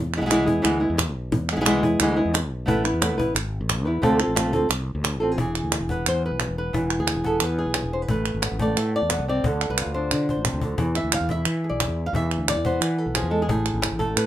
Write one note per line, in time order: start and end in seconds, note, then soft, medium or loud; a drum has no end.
0.00 0.20 E2 medium
0.14 0.20 G#3 soft
0.14 0.20 B3 medium
0.14 0.21 E4 soft
0.14 clap medium
0.18 0.48 B1 medium
0.18 0.25 G#3 medium
0.18 0.25 B3 medium
0.18 0.21 G#4 medium
0.22 0.29 G#3 medium
0.22 0.30 B3 medium
0.22 0.25 E4 medium
0.22 0.30 E4 medium
0.22 0.26 G#4 medium
0.27 0.46 E3 medium
0.27 0.47 G#3 medium
0.27 0.30 G#4 medium
0.27 cajon slap medium
0.27 clap medium
0.31 0.47 B3 medium
0.31 0.47 E4 medium
0.31 0.45 G#4 medium
0.46 0.63 E2 medium
0.46 0.62 B3 soft
0.46 0.62 E4 soft
0.46 0.63 G#4 medium
0.46 cajon bass medium
0.62 0.88 D2 medium
0.62 0.79 E3 medium
0.62 0.80 G#3 medium
0.62 0.80 B3 medium
0.62 0.80 E4 medium
0.62 0.79 G#4 medium
0.62 clap medium
0.80 0.97 B3 soft
0.80 0.97 E4 medium
0.80 0.97 G#4 medium
0.90 1.15 E2 medium
0.97 muted nylon-string guitar stroke medium
0.97 cajon bass medium
0.97 cajon slap medium
0.97 clap medium
1.15 1.31 B1 medium
1.32 1.56 E2 medium
1.32 muted nylon-string guitar stroke medium
1.32 cajon bass medium
1.49 1.55 G#3 soft
1.49 1.55 B3 medium
1.49 1.56 E4 soft
1.49 1.56 G#4 soft
1.49 cajon slap soft
1.49 clap medium
1.56 1.83 B1 medium
1.56 1.59 G#3 medium
1.56 1.60 B3 medium
1.56 1.60 E4 medium
1.56 1.60 G#4 medium
1.61 1.64 G#3 medium
1.61 1.64 B3 medium
1.61 1.64 E4 medium
1.61 1.65 G#4 medium
1.65 1.82 E3 medium
1.65 1.82 G#3 medium
1.65 1.82 B3 medium
1.65 1.82 E4 medium
1.65 1.81 G#4 medium
1.65 cajon slap loud
1.65 clap medium
1.83 1.99 E2 medium
1.83 2.00 B3 soft
1.83 2.00 E4 medium
1.83 1.99 G#4 medium
1.83 cajon bass medium
2.00 2.24 D2 medium
2.00 2.16 E3 medium
2.00 2.17 G#3 medium
2.00 2.17 B3 medium
2.00 2.16 E4 medium
2.00 2.15 G#4 medium
2.00 clap medium
2.16 2.33 B3 soft
2.16 2.33 E4 medium
2.16 2.33 G#4 medium
2.25 2.51 E2 medium
2.33 muted nylon-string guitar stroke medium
2.33 cajon slap medium
2.33 clap medium
2.51 2.67 B1 medium
2.66 2.92 A1 medium
2.66 2.83 A3 medium
2.66 2.83 B3 medium
2.66 2.84 E4 medium
2.66 2.83 B4 medium
2.66 cajon bass medium
2.84 3.01 B3 soft
2.84 3.01 E4 soft
2.84 3.00 B4 soft
2.84 clap medium
2.93 3.19 E2 medium
3.01 3.17 A3 soft
3.01 3.18 B3 medium
3.01 3.18 E4 medium
3.01 3.17 B4 medium
3.01 cajon slap loud
3.01 clap medium
3.18 3.34 A1 medium
3.18 3.34 B3 soft
3.18 3.34 E4 medium
3.18 3.34 B4 medium
3.18 cajon bass medium
3.35 3.59 G#1 medium
3.35 muted nylon-string guitar stroke medium
3.35 clap medium
3.61 3.86 A1 medium
3.69 cajon bass medium
3.69 cajon slap medium
3.69 clap medium
3.85 4.01 E2 medium
3.85 4.03 B3 soft
3.85 4.03 E4 soft
3.85 4.02 B4 medium
4.02 4.26 D2 medium
4.02 4.19 D3 medium
4.02 4.19 A3 medium
4.02 4.19 C4 medium
4.02 4.18 F4 medium
4.02 4.18 A4 medium
4.02 cajon bass medium
4.19 4.35 C4 soft
4.19 4.35 F4 soft
4.19 4.35 A4 medium
4.19 clap medium
4.28 4.53 A1 medium
4.35 4.52 A3 medium
4.35 4.53 C4 medium
4.35 4.53 F4 medium
4.35 4.51 A4 medium
4.35 cajon slap loud
4.35 clap medium
4.53 4.69 D2 medium
4.53 4.68 C4 soft
4.53 4.69 F4 medium
4.53 4.69 A4 medium
4.53 cajon bass medium
4.69 4.94 C2 medium
4.69 muted nylon-string guitar stroke medium
4.69 clap medium
4.88 cajon slap soft
4.95 5.19 D2 medium
5.04 cajon slap medium
5.04 clap medium
5.19 5.36 A1 medium
5.19 5.38 C4 soft
5.19 5.38 F4 soft
5.19 5.32 A4 medium
5.32 5.39 G#4 medium
5.37 5.61 E1 medium
5.37 6.73 E3 medium
5.37 6.24 G#4 medium
5.37 cajon bass medium
5.55 cajon slap soft
5.55 clap medium
5.63 5.79 D2 medium
5.72 cajon slap medium
5.72 clap medium
5.80 6.04 E1 medium
5.89 7.23 B3 medium
5.89 6.07 B4 medium
5.89 cajon bass medium
6.06 6.30 E2 medium
6.06 6.24 C5 medium
6.06 clap medium
6.26 6.57 B4 medium
6.31 6.47 B1 medium
6.40 cajon slap medium
6.40 clap medium
6.49 6.72 E1 medium
6.58 7.25 B4 medium
6.73 6.97 E1 medium
6.73 8.07 E3 medium
6.73 8.07 E4 soft
6.73 cajon bass medium
6.90 clap medium
6.99 7.14 D2 medium
6.99 7.57 G#4 medium
7.07 cajon slap medium
7.07 clap medium
7.15 7.39 E1 medium
7.24 8.07 B3 medium
7.24 7.43 A4 medium
7.24 cajon bass medium
7.40 7.65 E2 medium
7.40 7.93 B4 medium
7.40 clap medium
7.59 8.09 G#4 medium
7.66 7.82 B1 medium
7.74 cajon slap loud
7.74 clap medium
7.83 8.07 E1 medium
7.93 8.02 C5 medium
8.02 8.09 B4 medium
8.08 8.33 A1 medium
8.08 8.60 A3 medium
8.08 8.94 B4 medium
8.08 cajon bass medium
8.26 clap medium
8.34 8.50 G#1 medium
8.42 9.10 B3 soft
8.42 cajon slap medium
8.42 clap medium
8.52 8.75 A1 medium
8.59 9.42 A3 medium
8.59 8.78 D5 medium
8.59 cajon bass medium
8.77 9.00 A2 medium
8.77 8.94 E5 medium
8.77 clap medium
8.94 9.28 D5 medium
8.94 cajon slap soft
9.02 9.18 E2 medium
9.10 9.27 B3 medium
9.10 cajon slap medium
9.10 clap medium
9.19 9.42 C2 medium
9.28 9.45 C4 medium
9.28 10.04 D5 medium
9.44 9.68 D2 medium
9.44 10.45 D3 medium
9.44 9.70 A4 soft
9.44 cajon bass medium
9.61 clap medium
9.70 9.85 C2 medium
9.70 9.94 B4 medium
9.78 10.79 F4 soft
9.78 cajon slap medium
9.78 clap medium
9.86 10.10 D2 medium
9.94 10.78 D4 medium
9.94 10.28 C5 medium
10.11 10.35 D3 medium
10.11 10.64 D5 medium
10.11 cajon bass medium
10.11 clap medium
10.29 10.80 C5 medium
10.29 cajon bass medium
10.37 10.53 A1 medium
10.45 10.62 C3 medium
10.45 cajon bass medium
10.45 clap medium
10.53 10.77 D2 medium
10.61 10.79 D3 soft
10.61 cajon bass medium
10.78 11.03 E2 medium
10.78 12.13 E3 medium
10.78 cajon bass medium
10.95 11.13 E5 medium
10.95 clap medium
11.03 11.20 D2 medium
11.12 11.30 F5 medium
11.12 cajon slap medium
11.12 clap medium
11.21 11.45 E2 medium
11.29 12.52 E4 medium
11.29 11.79 E5 medium
11.29 cajon bass medium
11.45 11.70 E3 medium
11.45 clap medium
11.63 12.13 G#4 soft
11.63 cajon slap soft
11.69 11.87 B1 medium
11.69 12.14 D5 medium
11.80 12.06 E5 medium
11.80 cajon bass medium
11.80 cajon slap medium
11.80 clap medium
11.88 12.12 E2 medium
12.06 12.15 F5 medium
12.13 12.37 E2 medium
12.13 13.47 E3 medium
12.13 12.49 E5 medium
12.13 cajon bass medium
12.31 clap medium
12.38 12.55 D2 medium
12.48 12.99 D5 medium
12.48 cajon slap medium
12.48 clap medium
12.55 12.79 E2 medium
12.65 13.30 B3 medium
12.65 12.81 C5 medium
12.65 cajon bass medium
12.80 13.05 E3 medium
12.80 12.98 B4 medium
12.80 clap medium
12.98 13.15 A4 medium
13.06 13.22 B1 medium
13.15 13.32 F3 medium
13.15 13.41 G#4 medium
13.15 cajon slap medium
13.15 clap medium
13.23 13.47 E2 medium
13.30 13.48 G#3 medium
13.30 13.40 A4 medium
13.42 13.48 G#4 medium
13.48 13.72 A1 medium
13.48 14.26 A2 medium
13.48 13.99 G#4 medium
13.48 cajon bass medium
13.66 clap medium
13.74 13.90 G#1 medium
13.82 14.26 E4 soft
13.82 cajon slap loud
13.82 clap medium
13.92 14.15 A1 medium
13.99 14.26 A3 medium
13.99 14.16 A4 medium
13.99 cajon bass medium
14.16 14.26 A2 medium
14.16 14.26 B4 medium
14.16 clap medium